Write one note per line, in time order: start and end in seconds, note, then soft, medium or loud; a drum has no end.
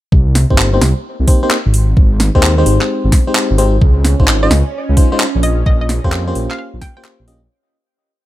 0.12 0.45 C2 medium
0.12 kick loud
0.35 snare medium
0.35 open hi-hat loud
0.50 0.79 G1 medium
0.50 0.70 A#3 medium
0.50 0.70 C4 medium
0.50 0.70 D#4 medium
0.50 0.70 G4 medium
0.50 0.70 C5 medium
0.50 kick medium
0.58 clap loud
0.74 0.80 A#3 medium
0.74 0.80 C4 medium
0.74 0.80 D#4 medium
0.74 0.80 G4 medium
0.74 0.80 C5 medium
0.81 0.93 C2 medium
0.81 snare medium
0.81 open hi-hat loud
1.20 1.26 C2 loud
1.28 1.41 A#3 medium
1.28 1.41 C4 medium
1.28 1.41 D#4 medium
1.28 1.41 G4 medium
1.28 1.41 C5 medium
1.28 kick loud
1.28 open hi-hat loud
1.43 1.56 A#3 medium
1.43 1.56 C4 medium
1.43 1.56 D#4 medium
1.43 1.56 G4 medium
1.43 1.56 C5 loud
1.51 clap loud
1.66 1.94 G#1 medium
1.74 open hi-hat loud
1.97 2.30 G#1 medium
1.97 kick loud
2.20 snare medium
2.20 open hi-hat loud
2.35 2.63 D#2 medium
2.35 2.55 G#3 medium
2.35 2.55 C4 medium
2.35 2.55 D#4 medium
2.35 2.55 G4 medium
2.35 2.55 C5 loud
2.35 kick medium
2.43 clap loud
2.58 3.24 G#3 medium
2.58 3.24 C4 medium
2.58 3.24 D#4 medium
2.58 3.24 G4 medium
2.58 3.24 C5 loud
2.66 2.78 G#1 medium
2.66 open hi-hat loud
2.81 clap medium
3.04 3.11 G#1 loud
3.12 kick loud
3.12 snare medium
3.12 open hi-hat loud
3.27 3.56 G#3 medium
3.27 3.56 C4 medium
3.27 3.56 D#4 medium
3.27 3.56 G4 medium
3.27 3.56 C5 medium
3.35 clap loud
3.51 3.79 G#1 medium
3.58 3.76 G#3 medium
3.58 3.76 C4 medium
3.58 3.76 D#4 medium
3.58 3.76 G4 medium
3.58 3.76 C5 loud
3.58 open hi-hat loud
3.81 4.14 C#2 loud
3.81 7.52 C#4 medium
3.81 kick loud
4.05 snare medium
4.05 open hi-hat loud
4.20 4.48 G#1 medium
4.20 4.39 G#3 medium
4.20 4.39 C#4 medium
4.20 4.39 D#4 medium
4.20 4.39 F4 medium
4.20 4.39 C5 medium
4.20 kick medium
4.28 clap loud
4.43 4.50 G#3 medium
4.43 4.50 C#4 medium
4.43 4.50 D#4 medium
4.43 4.50 F4 medium
4.43 4.50 C5 medium
4.43 4.53 D#5 medium
4.51 4.63 C#2 medium
4.51 snare medium
4.51 open hi-hat loud
4.89 4.95 C#2 loud
4.97 5.10 G#3 medium
4.97 5.10 C#4 medium
4.97 5.10 D#4 medium
4.97 5.10 F4 medium
4.97 5.10 C5 medium
4.97 kick loud
4.97 open hi-hat loud
5.12 5.26 G#3 loud
5.12 5.26 C#4 medium
5.12 5.26 D#4 medium
5.12 5.26 F4 medium
5.12 5.26 C5 loud
5.20 clap loud
5.35 5.63 A#1 medium
5.43 5.60 D#5 medium
5.43 open hi-hat loud
5.66 5.99 A#1 loud
5.66 5.76 D#5 medium
5.66 kick loud
5.81 5.86 D#5 medium
5.89 snare medium
5.89 open hi-hat loud
6.04 6.33 F2 medium
6.04 6.24 A#3 loud
6.04 6.24 C#4 medium
6.04 6.24 F4 medium
6.04 6.24 G4 medium
6.04 6.24 C5 loud
6.04 kick medium
6.12 clap loud
6.27 6.93 A#3 medium
6.27 6.93 C#4 medium
6.27 6.93 F4 medium
6.27 6.93 G4 medium
6.27 6.93 C5 loud
6.35 6.47 A#1 medium
6.35 open hi-hat loud
6.51 6.56 F5 medium
6.51 clap medium
6.59 6.68 F5 medium
6.74 6.80 A#1 loud
6.81 6.91 G5 medium
6.81 kick loud
6.81 snare medium
6.81 open hi-hat loud
6.97 7.26 A#3 medium
6.97 7.26 C#4 medium
6.97 7.26 F4 medium
6.97 7.26 G4 medium
6.97 7.26 C5 loud
6.97 7.02 G5 medium
7.05 clap loud
7.20 7.48 A#1 medium
7.28 7.41 A#3 medium
7.28 7.41 C#4 medium
7.28 7.41 F4 medium
7.28 7.41 G4 medium
7.28 7.41 D#5 medium
7.28 open hi-hat loud